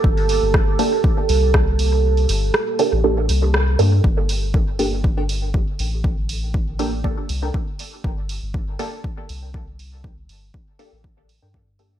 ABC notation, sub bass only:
X:1
M:4/4
L:1/16
Q:"Swing 16ths" 1/4=120
K:Gm
V:1 name="Sub bass" clef=bass
G,,,3 G,,,3 z4 C,,6- | C,,2 G,,,2 z3 A,,,3 C,,4 G,,2 | G,,,12- G,,, z A,,,2- | A,,,8- A,,, z C,,2 z4 |
G,,,3 G,,,3 z4 C,,6- | C,,2 G,,,2 z3 A,,,4 G,,4- G,, |]